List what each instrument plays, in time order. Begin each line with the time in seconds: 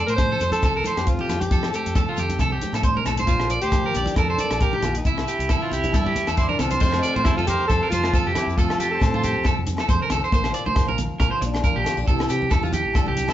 Already playing: steel-string acoustic guitar F2 F3 A3 C4
0.06 fingered electric bass A2, alto saxophone A#4, clean electric guitar C5, closed hi-hat
0.16 steel-string acoustic guitar F3, alto saxophone C5, kick, cross-stick, closed hi-hat, low agogo, shekere
0.32 clean electric guitar A4
0.40 fingered electric bass F2, steel-string acoustic guitar A4, clean electric guitar C5, closed hi-hat, low conga, shekere
0.52 alto saxophone A4, closed hi-hat, high conga
0.62 fingered electric bass C2, clean electric guitar A4, muted steel-string acoustic guitar stroke, kick, cross-stick, closed hi-hat, low agogo, shekere
0.77 clean electric guitar A#4
0.84 steel-string acoustic guitar A3, clean electric guitar C5, closed hi-hat, high conga, shekere
0.96 fingered electric bass F2, alto saxophone G4, cross-stick, closed hi-hat, low agogo
1.06 steel-string acoustic guitar F3 C4, alto saxophone F4, kick, closed hi-hat, shekere
1.19 clean electric guitar G4, high conga
1.29 fingered electric bass F2, steel-string acoustic guitar C4, cross-stick, closed hi-hat, low conga, low agogo, shekere
1.41 alto saxophone G4, closed hi-hat, high conga
1.51 steel-string acoustic guitar F2, fingered electric bass F3, clean electric guitar A4, kick, closed hi-hat, shekere
1.63 cross-stick, low agogo
1.72 steel-string acoustic guitar A3, clean electric guitar G4, alto saxophone A4, closed hi-hat, shekere
1.86 fingered electric bass F2, closed hi-hat
1.95 steel-string acoustic guitar F3, clean electric guitar A4, kick, cross-stick, closed hi-hat, low agogo, shekere
2.09 clean electric guitar F4
2.17 fingered electric bass F2, steel-string acoustic guitar C4, clean electric guitar G4, closed hi-hat, low conga, shekere
2.29 closed hi-hat, high conga
2.39 fingered electric bass C2, steel-string acoustic guitar C3, clean electric guitar A4, kick, cross-stick, closed hi-hat, low agogo, shekere
2.52 clean electric guitar G4
2.61 steel-string acoustic guitar A3, closed hi-hat, high conga, shekere
2.73 fingered electric bass A2, clean electric guitar A4, cross-stick, closed hi-hat, low agogo
2.83 steel-string acoustic guitar G2, clean electric guitar C5, kick, closed hi-hat, shekere
2.97 clean electric guitar A#4, high conga
3.05 fingered electric bass B1, steel-string acoustic guitar A2, clean electric guitar A4, cross-stick, closed hi-hat, low conga, low agogo, shekere
3.17 clean electric guitar C5, closed hi-hat, high conga
3.27 fingered electric bass A#1, steel-string acoustic guitar A#2, alto saxophone F4, clean electric guitar C5, kick, closed hi-hat, shekere
3.39 cross-stick, low agogo
3.50 steel-string acoustic guitar A#3, clean electric guitar D5, closed hi-hat, shekere
3.61 fingered electric bass D2, alto saxophone G4, clean electric guitar C5, closed hi-hat
3.71 steel-string acoustic guitar F3, kick, cross-stick, closed hi-hat, low agogo, shekere
3.86 clean electric guitar A#4
3.94 fingered electric bass A#1, steel-string acoustic guitar D4, clean electric guitar D5, closed hi-hat, low conga, shekere
4.06 closed hi-hat, high conga
4.16 fingered electric bass F2, steel-string acoustic guitar F2, alto saxophone A4, clean electric guitar A#4, kick, cross-stick, closed hi-hat, low agogo, shekere
4.30 clean electric guitar C5
4.38 clean electric guitar D5, closed hi-hat, high conga, shekere
4.42 steel-string acoustic guitar A#3
4.50 fingered electric bass A#1, cross-stick, closed hi-hat, low agogo
4.61 steel-string acoustic guitar A2, alto saxophone G4, clean electric guitar A#4, kick, closed hi-hat, shekere
4.73 clean electric guitar G4, high conga
4.82 fingered electric bass A#1, steel-string acoustic guitar A#2, alto saxophone F4, cross-stick, closed hi-hat, low conga, low agogo, shekere
4.95 alto saxophone E4, closed hi-hat
5.05 fingered electric bass C2, steel-string acoustic guitar C3, clean electric guitar E4, kick, closed hi-hat, shekere
5.17 cross-stick, low agogo
5.28 steel-string acoustic guitar C4, clean electric guitar G4, closed hi-hat, shekere
5.39 fingered electric bass C2, closed hi-hat
5.49 steel-string acoustic guitar E3, clean electric guitar A4, kick, cross-stick, closed hi-hat, low agogo, shekere
5.62 clean electric guitar F4
5.71 fingered electric bass C2, steel-string acoustic guitar C4, clean electric guitar G4, closed hi-hat, low conga, shekere
5.84 closed hi-hat, high conga
5.92 fingered electric bass G2, steel-string acoustic guitar G2, clean electric guitar A4, kick, cross-stick, closed hi-hat, low agogo, shekere
6.06 clean electric guitar G4, low conga
6.16 steel-string acoustic guitar C4, closed hi-hat, high conga, shekere
6.27 fingered electric bass E2, clean electric guitar A4, cross-stick, closed hi-hat, low agogo
6.37 steel-string acoustic guitar D3, alto saxophone E4, clean electric guitar C5, kick, closed hi-hat, shekere
6.42 trumpet G4
6.49 alto saxophone D4, clean electric guitar A#4, high conga
6.54 trumpet F4
6.59 fingered electric bass C2, steel-string acoustic guitar E3, alto saxophone C4, trumpet F4, clean electric guitar A4, cross-stick, closed hi-hat, low conga, low agogo, shekere
6.71 clean electric guitar C5, closed hi-hat, high conga
6.80 steel-string acoustic guitar F2 A3, fingered electric bass F2, clean electric guitar C5, kick, crash, shekere
6.93 cross-stick, low agogo
7.03 steel-string acoustic guitar A4, clean electric guitar D5, closed hi-hat, shekere
7.16 fingered electric bass A2, clean electric guitar C5, high conga
7.24 steel-string acoustic guitar F3 C4, alto saxophone E4, kick, cross-stick, low agogo, shekere
7.28 trumpet A4
7.36 fingered electric bass F2, alto saxophone F4, clean electric guitar A4, trumpet A4, high conga
7.47 alto saxophone G4, trumpet A#4, clean electric guitar C5, closed hi-hat, high conga, low conga, shekere
7.67 fingered electric bass F2, steel-string acoustic guitar C3 C4, alto saxophone A4, clean electric guitar A4, trumpet C5, kick, cross-stick, low agogo, shekere
7.83 clean electric guitar A#4
7.90 fingered electric bass F2, alto saxophone F4, trumpet A4, clean electric guitar C5, closed hi-hat, high conga, shekere
8.03 cross-stick, low agogo
8.12 steel-string acoustic guitar F3 C4, clean electric guitar A4, kick, shekere
8.26 fingered electric bass F2, clean electric guitar G4
8.34 steel-string acoustic guitar C4, alto saxophone E4, trumpet G4, cross-stick, closed hi-hat, low conga, low agogo, shekere
8.47 fingered electric bass F2, shekere
8.56 steel-string acoustic guitar F2 A3, alto saxophone F4, clean electric guitar A4, trumpet A4, kick, shekere
8.69 cross-stick, low agogo
8.79 fingered electric bass F3, steel-string acoustic guitar C4, clean electric guitar G4, closed hi-hat, shekere
8.90 alto saxophone A4, trumpet C5
9.00 fingered electric bass A2, steel-string acoustic guitar F3 C4, muted clean electric guitar stroke, kick, cross-stick, low agogo, shekere
9.14 clean electric guitar F4, high conga
9.24 clean electric guitar G4, closed hi-hat, high conga, low conga, shekere
9.36 fingered electric bass D2
9.44 steel-string acoustic guitar C3 C4, clean electric guitar A4, kick, cross-stick, low agogo, shekere
9.58 fingered electric bass F2
9.67 steel-string acoustic guitar C4, closed hi-hat, high conga, shekere
9.77 clean electric guitar A4, cross-stick, low agogo
9.89 fingered electric bass F2, steel-string acoustic guitar A4, clean electric guitar C5, muted steel-string acoustic guitar stroke, kick, shekere
10.02 clean electric guitar A#4
10.10 fingered electric bass C2, steel-string acoustic guitar C4, clean electric guitar A4, cross-stick, closed hi-hat, low conga, low agogo, shekere
10.24 clean electric guitar C5, shekere
10.32 fingered electric bass A#1, steel-string acoustic guitar A#2 A#3, clean electric guitar C5, kick, shekere
10.44 cross-stick, low agogo
10.54 steel-string acoustic guitar F4, clean electric guitar D5, closed hi-hat, shekere
10.66 fingered electric bass D2, clean electric guitar C5, high conga
10.75 steel-string acoustic guitar F3, kick, cross-stick, low agogo, shekere
10.88 fingered electric bass A#1, clean electric guitar A#4, high conga
10.98 closed hi-hat, high conga, low conga, shekere
11.19 fingered electric bass A#1, steel-string acoustic guitar F2 F4, clean electric guitar A#4, kick, cross-stick, low agogo, shekere
11.31 clean electric guitar C5
11.41 fingered electric bass A#1, steel-string acoustic guitar D4, muted clean electric guitar stroke, closed hi-hat, high conga, shekere
11.54 cross-stick, low agogo
11.64 steel-string acoustic guitar F3 F4, clean electric guitar A#4, kick, shekere
11.76 fingered electric bass A#1, clean electric guitar G4
11.84 steel-string acoustic guitar C4, cross-stick, closed hi-hat, low conga, low agogo, shekere
11.97 fingered electric bass A#1, steel-string acoustic guitar D4
12.07 fingered electric bass C2, steel-string acoustic guitar C3 E3 C4 E4 G4, clean electric guitar A4, kick, shekere
12.19 cross-stick, low agogo
12.29 fingered electric bass C3, clean electric guitar G4, steel-string acoustic guitar G4, closed hi-hat, shekere
12.42 high conga
12.50 fingered electric bass E2, clean electric guitar A4, kick, cross-stick, low agogo, shekere
12.55 steel-string acoustic guitar E4
12.63 clean electric guitar F4, high conga, shekere
12.73 clean electric guitar G4, closed hi-hat, high conga, low conga, shekere
12.85 fingered electric bass A1
12.93 steel-string acoustic guitar G2 G4, clean electric guitar A4, kick, cross-stick, low agogo, shekere
13.06 fingered electric bass C2, clean electric guitar G4, high conga
13.17 steel-string acoustic guitar E4, closed hi-hat, high conga, shekere
13.28 clean electric guitar A4, cross-stick, low conga, low agogo, shekere